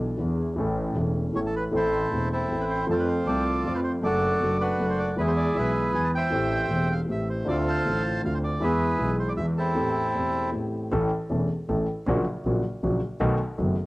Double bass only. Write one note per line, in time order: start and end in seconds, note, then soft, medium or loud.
0.00 0.17 B1 medium
0.19 0.55 E2 medium
0.57 0.94 A1 medium
0.96 1.32 E1 soft
1.35 1.71 A1 medium
1.73 2.10 A1 medium
2.12 2.49 E1 soft
2.51 2.87 A1 soft
2.89 3.25 F2 medium
3.27 3.63 C2 soft
3.65 4.01 F2 soft
4.04 4.40 F#1 medium
4.42 4.78 F#1 soft
4.79 5.16 F#1 soft
5.18 5.54 E2 medium
5.57 5.93 B1 soft
5.94 6.31 E2 soft
6.33 6.70 A1 medium
6.72 7.08 E1 soft
7.10 7.46 A1 soft
7.48 7.84 D2 medium
7.87 8.23 A1 soft
8.24 8.61 D2 soft
8.62 8.99 E2 medium
9.00 9.37 B1 soft
9.38 9.75 E2 soft
10.92 11.09 A1 medium
11.31 11.47 E1 medium
11.69 11.85 A1 medium
12.07 12.23 A#1 medium
12.45 12.61 A#1 medium
12.83 12.99 A#1 medium
13.21 13.37 B1 medium
13.59 13.75 F#1 medium